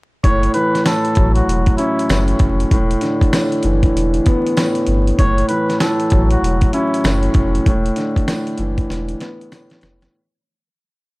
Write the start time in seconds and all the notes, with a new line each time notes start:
0.24 F#1 A2 C#5, kick, closed hi-hat
0.43 closed hi-hat
0.54 E3 B4, closed hi-hat
0.75 snare, closed hi-hat
0.86 A2 A4, snare, closed hi-hat, tambourine
1.05 closed hi-hat
1.15 A1 F#3, kick, closed hi-hat
1.35 F#4, closed hi-hat
1.48 E1, closed hi-hat
1.66 kick, closed hi-hat
1.77 C#4 E4, closed hi-hat
1.99 closed hi-hat
2.09 F#1 A2, snare, closed hi-hat, tambourine
2.28 closed hi-hat
2.39 F1, kick, closed hi-hat
2.60 closed hi-hat
2.71 E1 A2, kick, closed hi-hat
2.91 closed hi-hat
3.01 D3, snare, closed hi-hat
3.21 kick, closed hi-hat
3.32 A2, snare, closed hi-hat, tambourine
3.52 closed hi-hat
3.63 F#1 E3, closed hi-hat
3.83 kick, closed hi-hat
3.95 E1, closed hi-hat
4.14 closed hi-hat
4.26 B3, kick, closed hi-hat
4.46 closed hi-hat
4.57 A2, snare, closed hi-hat, tambourine
4.75 closed hi-hat
4.87 G1, closed hi-hat
5.07 closed hi-hat
5.19 F#1 A2 C#5, kick, closed hi-hat
5.38 closed hi-hat
5.48 E3 B4, closed hi-hat
5.70 snare, closed hi-hat
5.80 A2 A4, snare, closed hi-hat, tambourine
6.00 closed hi-hat
6.10 A1 F#3, kick, closed hi-hat
6.30 F#4, closed hi-hat
6.42 E1, closed hi-hat
6.61 kick, closed hi-hat
6.73 C#4 E4, closed hi-hat
6.94 closed hi-hat
7.04 F#1 A2, snare, closed hi-hat, tambourine
7.23 closed hi-hat
7.34 F1, kick, closed hi-hat
7.55 closed hi-hat
7.66 E1 A2, kick, closed hi-hat
7.86 closed hi-hat
7.96 D3, snare, closed hi-hat
8.16 kick, closed hi-hat
8.27 A2, snare, closed hi-hat, tambourine
8.47 closed hi-hat
8.58 F#1 E3, closed hi-hat
8.78 kick, closed hi-hat
8.90 E1, snare, closed hi-hat
9.09 closed hi-hat
9.20 B3, snare, closed hi-hat
9.41 closed hi-hat
9.52 A2, snare, closed hi-hat, tambourine
9.70 snare, closed hi-hat
9.81 F1, snare, closed hi-hat
10.02 snare, closed hi-hat